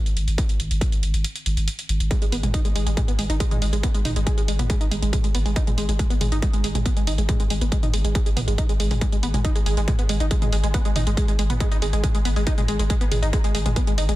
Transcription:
0.06 closed hi-hat
0.17 G#1, closed hi-hat
0.28 G#1, closed hi-hat
0.38 kick, closed hi-hat
0.49 closed hi-hat
0.60 G#1, closed hi-hat
0.71 G#1, closed hi-hat
0.81 kick, closed hi-hat
0.92 closed hi-hat
1.03 G#1, closed hi-hat
1.14 G#1, closed hi-hat
1.24 closed hi-hat
1.36 closed hi-hat
1.46 G#1, closed hi-hat
1.57 G#1, closed hi-hat
1.68 closed hi-hat
1.79 closed hi-hat
1.89 G#1, closed hi-hat
2.00 G#1, closed hi-hat
2.11 G#3, kick, closed hi-hat
2.22 G#3, closed hi-hat
2.32 G#1 B3, open hi-hat
2.43 G#1 G#3, closed hi-hat, mid tom
2.54 D#4, kick, closed hi-hat
2.65 G#3, closed hi-hat
2.75 G#1 G#3, open hi-hat
2.86 G#1 G#3, closed hi-hat
2.97 G#3, kick, closed hi-hat, mid tom
3.08 B3, closed hi-hat
3.19 G#1 G#3, open hi-hat
3.30 G#1 D#4, closed hi-hat
3.40 G#3, kick, closed hi-hat
3.51 G#3, closed hi-hat, mid tom
3.62 G#1 G#3, open hi-hat
3.73 G#1 G#3, closed hi-hat
3.83 B3, kick, closed hi-hat
3.94 G#3, closed hi-hat
4.05 G#1 D#4, mid tom, open hi-hat
4.16 G#1 G#3, closed hi-hat
4.27 G#3, kick, closed hi-hat
4.38 G#3, closed hi-hat
4.48 G#1 G#3, open hi-hat
4.59 G#1 B3, closed hi-hat, mid tom
4.70 G#3, kick, closed hi-hat
4.81 D#4, closed hi-hat
4.91 G#1 G#3, open hi-hat
5.02 G#1 G#3, closed hi-hat
5.13 G#3, kick, closed hi-hat, mid tom
5.24 G#3, closed hi-hat
5.34 G#1 B3, open hi-hat
5.45 G#1 G#3, open hi-hat
5.56 D#4, kick, closed hi-hat
5.67 G#3, closed hi-hat, mid tom
5.78 G#1 G#3, open hi-hat
5.89 G#1 G#3, closed hi-hat
5.99 G#3, kick, closed hi-hat
6.10 B3, closed hi-hat
6.21 G#1 G#3, mid tom, open hi-hat
6.32 G#1 D#4, closed hi-hat
6.42 G#3, kick, closed hi-hat
6.53 G#3, closed hi-hat
6.64 G#1 G#3, open hi-hat
6.75 G#1 G#3, closed hi-hat, mid tom
6.86 B3, kick, closed hi-hat
6.97 G#3, closed hi-hat
7.07 G#1 D#4, open hi-hat
7.18 G#1 G#3, closed hi-hat
7.29 G#3, kick, closed hi-hat, mid tom
7.40 G#3, closed hi-hat
7.50 G#1 G#3, open hi-hat
7.61 G#1 B3, closed hi-hat
7.72 G#3, kick, closed hi-hat
7.83 D#4, closed hi-hat, mid tom
7.93 G#1 G#3, open hi-hat
8.04 G#1 G#3, closed hi-hat
8.15 G#3, kick, closed hi-hat
8.26 G#3, closed hi-hat
8.37 G#1 B3, mid tom, open hi-hat
8.48 G#1 G#3, closed hi-hat
8.58 D#4, kick, closed hi-hat
8.69 G#3, closed hi-hat
8.80 G#1 G#3, open hi-hat
8.91 G#1 G#3, mid tom, open hi-hat
9.01 G#3, kick, closed hi-hat
9.12 G#3, closed hi-hat
9.23 G#1 B3, open hi-hat
9.34 G#1 G#3, closed hi-hat, mid tom
9.45 D#4, kick, closed hi-hat
9.56 G#3, closed hi-hat
9.66 G#1 G#3, open hi-hat
9.77 G#1 G#3, closed hi-hat
9.88 G#3, kick, closed hi-hat, mid tom
9.99 B3, closed hi-hat
10.09 G#1 G#3, open hi-hat
10.20 G#1 D#4, closed hi-hat
10.31 G#3, kick, closed hi-hat
10.42 G#3, closed hi-hat, mid tom
10.52 G#1 G#3, open hi-hat
10.63 G#1 G#3, closed hi-hat
10.74 B3, kick, closed hi-hat
10.85 G#3, closed hi-hat
10.95 G#1 D#4, mid tom, open hi-hat
11.07 G#1 G#3, closed hi-hat
11.17 G#3, kick, closed hi-hat
11.28 G#3, closed hi-hat
11.39 G#1 G#3, open hi-hat
11.50 G#1 B3, closed hi-hat, mid tom
11.60 G#3, kick, closed hi-hat
11.72 D#4, closed hi-hat
11.82 G#1 G#3, open hi-hat
11.93 G#1 G#3, closed hi-hat
12.04 G#3, kick, closed hi-hat, mid tom
12.15 G#3, closed hi-hat
12.25 G#1 B3, open hi-hat
12.36 G#1 G#3, open hi-hat
12.47 D#4, kick, closed hi-hat
12.58 G#3, closed hi-hat, mid tom
12.68 G#1 G#3, open hi-hat
12.79 G#1 G#3, closed hi-hat
12.90 G#3, kick, closed hi-hat
13.01 B3, closed hi-hat
13.11 G#1 G#3, mid tom, open hi-hat
13.22 G#1 D#4, closed hi-hat
13.33 G#3, kick, closed hi-hat
13.44 G#3, closed hi-hat
13.55 G#1 G#3, open hi-hat
13.66 G#1 G#3, closed hi-hat, mid tom
13.76 B3, kick, closed hi-hat
13.87 G#3, closed hi-hat
13.98 G#1 D#4, open hi-hat
14.09 G#1 G#3, closed hi-hat

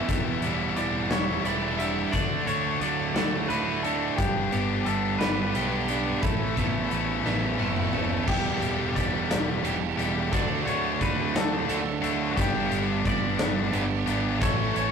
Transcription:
Already playing: E3 E4 E5
0.08 E1 E2 E3 G3 B3 E4, kick, closed hi-hat
0.41 E1 E3 G3 B3 E4, closed hi-hat
0.76 E1 E3 G3 B3 E4 D5, closed hi-hat
1.10 E1 E3 G3 B3 E4 C#5, snare, closed hi-hat
1.45 E1 E3 G3 B3 E4 D5, closed hi-hat
1.78 E3 G3 B3 D4 E4 E5, closed hi-hat
2.12 D2 D3 A3 D4 F#4 D5, kick, closed hi-hat
2.47 D2 D3 A3 D4 F#4 C#5, closed hi-hat
2.80 D2 D3 F#3 A3 D4 F#4 D5, closed hi-hat
3.14 D2 D3 A3 D4 F#4 D5, snare, closed hi-hat
3.48 D2 D3 A3 D4 E4 F#4 B4, closed hi-hat
3.83 D3 A3 D4 F#4 A4, closed hi-hat
4.17 G1 G2 G3 B3 D4 G4, kick, closed hi-hat
4.52 G1 G3 B3 D4 G4, closed hi-hat
4.85 G1 G3 B3 D4 G4 A4, closed hi-hat
5.19 G1 G3 B3 D4 G4 B4, snare, closed hi-hat
5.54 B1 G3 B3 D4 G4, closed hi-hat
5.88 G3 B3 D4 G4, closed hi-hat
6.21 A1 A2 E3 A3 C#4 E4 A4, kick, closed hi-hat
6.56 A1 E3 A3 B3 C#4 A4, kick, closed hi-hat
6.90 A1 E3 A3 C#4 A4, closed hi-hat
7.25 A1 E3 A3 B3 C#4 A4, snare
7.59 F#1 E3 A3 C#4 E4 A4, high tom
7.76 mid tom
7.93 E3 A3 C#4 A4, mid tom
8.26 E1 E2 B2 E3 G3 B3 E4 G4, kick, crash
8.60 E1 E3 G3 B3 G4, closed hi-hat
8.95 E1 E3 G3 B3 G4 D5, kick, closed hi-hat
9.29 E1 E3 G3 B3 G4, snare, closed hi-hat
9.63 E1 E2 B2 E3 G3 E4 G4, closed hi-hat
9.98 E1 E3 G3 B3 G4, closed hi-hat
10.32 D2 D3 F#3 A3 D4 F#4 D5, kick, closed hi-hat
10.65 D2 D3 A3 D4 F#4 C#5, closed hi-hat
10.99 D2 D3 A3 D4 F#4 B4, kick, closed hi-hat
11.33 D2 D3 A3 D4 F#4 A4, snare, closed hi-hat
11.68 D2 D3 F#3 A3 D4 F#4, closed hi-hat
12.02 D2 D3 A3 D4 F#4, closed hi-hat
12.31 F#4
12.36 G1 G2 D3 G3 B3 D4 G4, kick, closed hi-hat
12.40 G4
12.70 G1 G3 B3 D4 G4, closed hi-hat
13.04 G1 G3 B3 D4 G4 D5, kick, closed hi-hat
13.38 G1 G3 B3 D4 G4, snare, closed hi-hat
13.72 G1 G2 D3 G3 B3 D4 G4, closed hi-hat
14.06 G#1 G3 B3 D4 G4, closed hi-hat
14.40 A1 A2 E3 A3 C#4 A4 C#5, kick, closed hi-hat
14.74 A1 E3 A3 C#4 A4 C#5, closed hi-hat

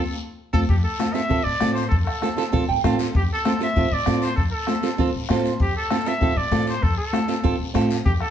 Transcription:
0.53 F2 C4 F4 A4, bombo low, high conga, long guiro
0.69 F2 G4, bombo low, high conga, long guiro
0.84 A4
0.99 C4 F4 A4, bombo rim, high conga, short guiro
1.14 C4 F4 A4 E5, short guiro
1.29 A2 C4 F4 A4, bombo low, high conga, low conga, long guiro
1.44 A2 D5
1.60 A2 C4 F4 A4, bombo rim, high conga, short guiro
1.74 C5, short guiro
1.89 F2 A4, bombo low, high conga, low conga, long guiro
2.05 A4, bombo rim
2.21 C4 F4 A4, bombo rim, high conga, short guiro
2.37 C4 F4 A4, short guiro
2.52 A2 C4 F4 A4, bombo low, high conga, low conga, long guiro
2.69 A2 G5
2.84 A2 C4 F4 A4 F5, bombo rim, high conga, low conga, short guiro
2.99 A4, short guiro
3.15 F2 G4, bombo low, high conga, low conga, long guiro
3.33 A4
3.45 C4 F4 A4, bombo rim, high conga, short guiro
3.60 C4 F4 A4 E5, short guiro
3.76 A2 C4 F4 A4, bombo low, high conga, low conga, long guiro
3.91 A2 D5
4.06 A2 C4 F4 A4, bombo rim, high conga, short guiro
4.22 C5, short guiro
4.36 F2 A4, bombo low, high conga, long guiro
4.52 A4
4.67 C4 F4 A4, bombo rim, high conga, short guiro
4.83 C4 F4 A4, short guiro
4.98 A2 C4 F4 A4, bombo low, high conga, low conga, long guiro
5.14 A2
5.29 A2 C4 F4 A4 C5, bombo rim, high conga, short guiro
5.44 short guiro
5.60 F2 G4, bombo low, high conga, long guiro
5.77 A4
5.90 C4 F4 A4, bombo rim, high conga, short guiro
6.05 C4 F4 A4 E5, short guiro
6.21 A2 C4 F4 A4, bombo low, high conga, low conga, long guiro
6.36 A2 D5
6.51 A2 C4 F4 A4, bombo rim, high conga, low conga, short guiro
6.67 C5, short guiro
6.82 F2 A4, bombo low, high conga, long guiro
6.98 A4
7.12 C4 F4 A4, bombo rim, high conga, short guiro
7.28 C4 F4 A4, short guiro
7.43 A2 C4 F4 A4, bombo low, high conga, low conga, long guiro
7.60 A2
7.74 A2 C4 F4 A4, bombo rim, high conga, short guiro
7.90 short guiro
8.05 F2 G4, bombo low, high conga, low conga, long guiro
8.20 A4, bombo rim

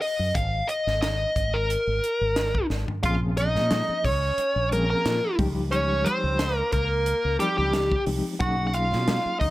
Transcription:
0.01 D#5, open hi-hat
0.19 F#2
0.35 G#1 F5, kick, closed hi-hat
0.68 D#5, closed hi-hat
0.87 G#1, snare
1.02 D#5, snare, closed hi-hat
1.36 G#1, kick, closed hi-hat
1.54 A#4
1.70 closed hi-hat
1.87 G#1
2.04 closed hi-hat
2.21 G#1
2.36 snare, closed hi-hat
2.55 kick
2.70 G#1, snare
2.88 floor tom
3.03 A#1 F3 A#3 C4 C#4 F4 G#4 F5, kick, closed hi-hat, muted conga
3.37 D#4 D#5, closed hi-hat, muted conga
3.55 A#2, snare
3.71 snare, closed hi-hat, high conga
3.89 muted fretless electric bass stroke
4.04 C#2 C#4 C#5, kick, open hi-hat, muted conga
4.37 muted fretless electric bass stroke, closed hi-hat, muted conga
4.56 A#1
4.71 F3 A#3 C4 C#4 G#4 A#4, closed hi-hat, high conga
4.90 A#3 A#4
5.05 A#2, snare, closed hi-hat
5.39 C#2 F3 G3 G#3 D#4 G4, kick, open hi-hat, high conga
5.71 C#4 C#5, closed hi-hat
6.04 C4 C5, closed hi-hat, muted conga, high conga
6.24 C#2
6.39 snare, closed hi-hat
6.54 A#3 A#4
6.72 C#2 A#3 A#4, kick, closed hi-hat, muted conga
7.06 closed hi-hat, muted conga
7.25 C#2
7.40 F3 G3 C4 D#4 G4, closed hi-hat
7.58 C#2 G3 G4
7.73 snare, closed hi-hat, high conga
7.92 kick
8.06 C2 F3 G#3 C4 D#4 G4, open hi-hat
8.39 B1 F#3 A#3 C#4 D#4 F#4 G#4 F#5, kick, closed hi-hat, muted conga
8.67 F#4 F#5
8.73 F4 F5, closed hi-hat, muted conga
8.91 B2, snare
9.08 snare, closed hi-hat, high conga
9.25 muted fretless electric bass stroke
9.40 D#2 D#4 D#5, kick, open hi-hat, muted conga

